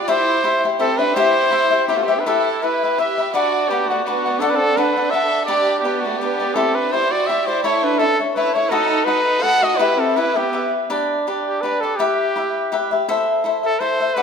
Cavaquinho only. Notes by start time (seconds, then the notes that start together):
0.08 E4 G4 C5 E5
0.44 E4 G4 C5 E5
0.64 G4 C5 E5
0.79 E4 G4 C5 E5
0.99 G4 C5 E5
1.16 E4 G4 C5 E5
1.51 E4 G4 C5 E5
1.71 G4 C5 E5
1.88 E4 G4 C5 E5
2.08 G4 C5 E5
2.26 E4 G4 B4 E5
2.62 E4 G4 B4 E5
2.83 G4 B4 E5
2.98 E4 G4 B4 E5
3.18 G4 B4 E5
3.34 D4 B4 D5 F#5
3.70 D4 B4 D5 F#5
3.90 B4 D5 F#5
4.06 D4 B4 D5 F#5
4.26 B4 D5 F#5
4.40 D4 A4 D5 F#5
4.77 D4 A4 D5 F#5
4.96 A4 D5 F#5
5.13 D4 A4 D5 F#5
5.48 D4 G4 B4 D5
5.84 D4 G4 B4 D5
6.04 G4 B4 D5
6.21 D4 G4 B4 D5
6.40 G4 B4 D5
6.56 E4 G4 C5 D5
6.93 E4 G4 C5 D5
7.11 G4 C5 D5
7.29 E4 G4 C5 D5
7.47 G4 C5 D5
7.64 E4 A4 C#5 E5
7.99 E4 A4 C#5 E5
8.19 A4 C#5 E5
8.36 E4 A4 C#5 E5
8.55 A4 C#5 E5
8.71 F#4 A4 B4 D#5
9.06 F#4 A4 B4 D#5
9.43 F#4 A4 B4 D#5
9.63 A4 B4 D#5
9.79 E4 G4 B4 E5
10.16 E4 G4 B4 E5
10.36 G4 B4 E5
10.53 E4 G4 B4 E5
10.90 D4 G4 B4 D5
11.27 D4 G4 B4 D5
11.63 D4 G4 B4 D5
11.83 G4 B4 D5
11.99 E4 G4 B4 E5
12.36 E4 G4 B4 E5
12.72 E4 G4 B4 E5
12.91 G4 B4 E5
13.08 E4 A4 C5 E5
13.44 E4 A4 C5 E5
13.63 A4 C5 E5
13.80 E4 A4 C5 E5
14.00 A4 C5 E5
14.16 D4 A4 D5 F#5